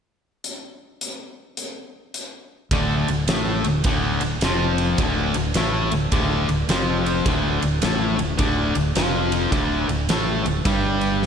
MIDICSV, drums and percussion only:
0, 0, Header, 1, 2, 480
1, 0, Start_track
1, 0, Tempo, 567644
1, 372, Time_signature, 4, 2, 24, 8
1, 9522, End_track
2, 0, Start_track
2, 0, Title_t, "Drums"
2, 374, Note_on_c, 9, 42, 54
2, 458, Note_off_c, 9, 42, 0
2, 856, Note_on_c, 9, 42, 62
2, 941, Note_off_c, 9, 42, 0
2, 1330, Note_on_c, 9, 42, 57
2, 1414, Note_off_c, 9, 42, 0
2, 1811, Note_on_c, 9, 42, 56
2, 1896, Note_off_c, 9, 42, 0
2, 2292, Note_on_c, 9, 51, 93
2, 2293, Note_on_c, 9, 36, 91
2, 2377, Note_off_c, 9, 36, 0
2, 2377, Note_off_c, 9, 51, 0
2, 2607, Note_on_c, 9, 51, 66
2, 2691, Note_off_c, 9, 51, 0
2, 2770, Note_on_c, 9, 51, 101
2, 2780, Note_on_c, 9, 38, 116
2, 2855, Note_off_c, 9, 51, 0
2, 2865, Note_off_c, 9, 38, 0
2, 3082, Note_on_c, 9, 51, 68
2, 3166, Note_off_c, 9, 51, 0
2, 3245, Note_on_c, 9, 51, 97
2, 3253, Note_on_c, 9, 36, 106
2, 3330, Note_off_c, 9, 51, 0
2, 3337, Note_off_c, 9, 36, 0
2, 3557, Note_on_c, 9, 51, 68
2, 3642, Note_off_c, 9, 51, 0
2, 3730, Note_on_c, 9, 51, 86
2, 3741, Note_on_c, 9, 38, 111
2, 3815, Note_off_c, 9, 51, 0
2, 3825, Note_off_c, 9, 38, 0
2, 4042, Note_on_c, 9, 51, 69
2, 4126, Note_off_c, 9, 51, 0
2, 4212, Note_on_c, 9, 51, 93
2, 4214, Note_on_c, 9, 36, 99
2, 4297, Note_off_c, 9, 51, 0
2, 4299, Note_off_c, 9, 36, 0
2, 4517, Note_on_c, 9, 51, 70
2, 4602, Note_off_c, 9, 51, 0
2, 4686, Note_on_c, 9, 51, 98
2, 4696, Note_on_c, 9, 38, 107
2, 4771, Note_off_c, 9, 51, 0
2, 4781, Note_off_c, 9, 38, 0
2, 5002, Note_on_c, 9, 51, 62
2, 5087, Note_off_c, 9, 51, 0
2, 5173, Note_on_c, 9, 51, 84
2, 5176, Note_on_c, 9, 36, 97
2, 5257, Note_off_c, 9, 51, 0
2, 5261, Note_off_c, 9, 36, 0
2, 5486, Note_on_c, 9, 51, 59
2, 5571, Note_off_c, 9, 51, 0
2, 5655, Note_on_c, 9, 51, 82
2, 5665, Note_on_c, 9, 38, 105
2, 5740, Note_off_c, 9, 51, 0
2, 5750, Note_off_c, 9, 38, 0
2, 5973, Note_on_c, 9, 51, 64
2, 6057, Note_off_c, 9, 51, 0
2, 6136, Note_on_c, 9, 51, 84
2, 6138, Note_on_c, 9, 36, 93
2, 6221, Note_off_c, 9, 51, 0
2, 6223, Note_off_c, 9, 36, 0
2, 6447, Note_on_c, 9, 51, 70
2, 6531, Note_off_c, 9, 51, 0
2, 6610, Note_on_c, 9, 51, 88
2, 6620, Note_on_c, 9, 38, 114
2, 6694, Note_off_c, 9, 51, 0
2, 6705, Note_off_c, 9, 38, 0
2, 6924, Note_on_c, 9, 51, 70
2, 7009, Note_off_c, 9, 51, 0
2, 7091, Note_on_c, 9, 51, 88
2, 7095, Note_on_c, 9, 36, 99
2, 7176, Note_off_c, 9, 51, 0
2, 7180, Note_off_c, 9, 36, 0
2, 7401, Note_on_c, 9, 51, 65
2, 7485, Note_off_c, 9, 51, 0
2, 7572, Note_on_c, 9, 51, 95
2, 7582, Note_on_c, 9, 38, 114
2, 7656, Note_off_c, 9, 51, 0
2, 7666, Note_off_c, 9, 38, 0
2, 7880, Note_on_c, 9, 51, 69
2, 7965, Note_off_c, 9, 51, 0
2, 8052, Note_on_c, 9, 36, 99
2, 8053, Note_on_c, 9, 51, 79
2, 8136, Note_off_c, 9, 36, 0
2, 8137, Note_off_c, 9, 51, 0
2, 8364, Note_on_c, 9, 51, 66
2, 8448, Note_off_c, 9, 51, 0
2, 8530, Note_on_c, 9, 51, 97
2, 8541, Note_on_c, 9, 38, 117
2, 8615, Note_off_c, 9, 51, 0
2, 8625, Note_off_c, 9, 38, 0
2, 8842, Note_on_c, 9, 51, 71
2, 8927, Note_off_c, 9, 51, 0
2, 9007, Note_on_c, 9, 51, 88
2, 9008, Note_on_c, 9, 36, 100
2, 9092, Note_off_c, 9, 51, 0
2, 9093, Note_off_c, 9, 36, 0
2, 9312, Note_on_c, 9, 51, 57
2, 9397, Note_off_c, 9, 51, 0
2, 9495, Note_on_c, 9, 38, 62
2, 9522, Note_off_c, 9, 38, 0
2, 9522, End_track
0, 0, End_of_file